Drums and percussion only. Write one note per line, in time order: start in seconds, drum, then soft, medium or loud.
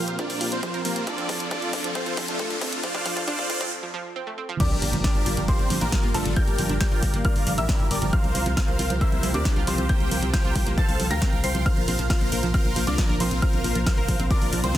0.08 closed hi-hat medium
0.19 kick loud
0.19 closed hi-hat medium
0.30 open hi-hat medium
0.41 open hi-hat loud
0.52 closed hi-hat soft
0.63 kick loud
0.63 closed hi-hat medium
0.74 closed hi-hat soft
0.85 open hi-hat loud
0.96 closed hi-hat medium
1.07 kick loud
1.07 closed hi-hat medium
1.18 closed hi-hat soft
1.29 kick loud
1.29 open hi-hat loud
1.40 closed hi-hat medium
1.51 kick loud
1.51 closed hi-hat medium
1.62 closed hi-hat soft
1.73 kick loud
1.73 open hi-hat loud
1.84 closed hi-hat medium
1.95 kick loud
1.95 closed hi-hat medium
2.06 closed hi-hat soft
2.17 kick loud
2.17 open hi-hat loud
2.28 closed hi-hat medium
2.39 kick loud
2.39 closed hi-hat medium
2.50 closed hi-hat soft
2.61 kick loud
2.61 open hi-hat loud
2.73 closed hi-hat medium
2.84 kick loud
2.84 closed hi-hat medium
2.95 kick medium
2.95 closed hi-hat soft
3.06 kick loud
3.06 open hi-hat loud
3.17 kick medium
3.17 closed hi-hat medium
3.28 kick loud
3.28 closed hi-hat medium
3.39 kick medium
3.39 closed hi-hat soft
3.50 kick loud
3.50 open hi-hat loud
3.61 kick medium
3.61 closed hi-hat medium
4.60 kick loud
4.60 closed hi-hat medium
4.60 crash loud
4.71 closed hi-hat soft
4.82 open hi-hat loud
4.93 closed hi-hat medium
5.04 kick loud
5.04 snare loud
5.04 closed hi-hat medium
5.15 closed hi-hat soft
5.26 open hi-hat loud
5.37 closed hi-hat medium
5.48 kick loud
5.48 closed hi-hat medium
5.59 closed hi-hat soft
5.70 open hi-hat loud
5.81 closed hi-hat medium
5.92 kick loud
5.92 snare loud
5.92 closed hi-hat medium
6.03 closed hi-hat soft
6.14 open hi-hat loud
6.25 closed hi-hat medium
6.36 kick loud
6.36 closed hi-hat medium
6.48 closed hi-hat soft
6.58 open hi-hat loud
6.69 closed hi-hat medium
6.81 kick loud
6.81 snare loud
6.81 closed hi-hat medium
6.92 closed hi-hat soft
7.03 kick medium
7.03 open hi-hat loud
7.14 closed hi-hat medium
7.25 kick loud
7.25 closed hi-hat medium
7.36 open hi-hat medium
7.47 open hi-hat loud
7.58 closed hi-hat medium
7.69 kick loud
7.69 snare loud
7.69 closed hi-hat medium
7.80 closed hi-hat soft
7.91 open hi-hat loud
8.02 closed hi-hat medium
8.13 kick loud
8.13 closed hi-hat medium
8.24 closed hi-hat soft
8.35 open hi-hat loud
8.46 closed hi-hat soft
8.57 kick loud
8.57 snare loud
8.57 closed hi-hat medium
8.68 closed hi-hat soft
8.79 open hi-hat loud
8.90 closed hi-hat medium
9.01 kick loud
9.01 closed hi-hat medium
9.12 closed hi-hat soft
9.23 open hi-hat loud
9.34 closed hi-hat medium
9.45 kick loud
9.45 snare loud
9.45 closed hi-hat medium
9.56 closed hi-hat soft
9.67 open hi-hat loud
9.78 closed hi-hat medium
9.89 kick loud
9.89 closed hi-hat medium
10.00 closed hi-hat soft
10.11 open hi-hat loud
10.23 closed hi-hat soft
10.34 kick loud
10.34 snare loud
10.34 closed hi-hat medium
10.45 closed hi-hat soft
10.56 kick medium
10.56 open hi-hat loud
10.67 closed hi-hat medium
10.78 kick loud
10.78 closed hi-hat medium
10.89 open hi-hat medium
11.00 open hi-hat loud
11.11 closed hi-hat soft
11.22 kick loud
11.22 snare loud
11.22 closed hi-hat soft
11.33 closed hi-hat soft
11.44 open hi-hat loud
11.55 closed hi-hat medium
11.66 kick loud
11.66 closed hi-hat soft
11.77 closed hi-hat soft
11.88 open hi-hat loud
11.99 closed hi-hat medium
12.10 kick loud
12.10 snare loud
12.10 closed hi-hat medium
12.21 closed hi-hat soft
12.32 open hi-hat loud
12.43 closed hi-hat medium
12.54 kick loud
12.54 closed hi-hat medium
12.65 closed hi-hat soft
12.76 open hi-hat loud
12.87 closed hi-hat soft
12.98 kick loud
12.98 snare loud
12.98 closed hi-hat medium
13.09 closed hi-hat soft
13.20 open hi-hat loud
13.31 closed hi-hat soft
13.42 kick loud
13.42 closed hi-hat medium
13.53 closed hi-hat soft
13.64 open hi-hat loud
13.75 closed hi-hat medium
13.86 kick loud
13.86 snare loud
13.86 closed hi-hat medium
13.98 closed hi-hat soft
14.09 kick medium
14.09 open hi-hat loud
14.20 closed hi-hat medium
14.31 kick loud
14.31 closed hi-hat medium
14.42 open hi-hat medium
14.53 open hi-hat loud
14.64 closed hi-hat medium
14.75 kick loud
14.75 snare loud
14.75 closed hi-hat medium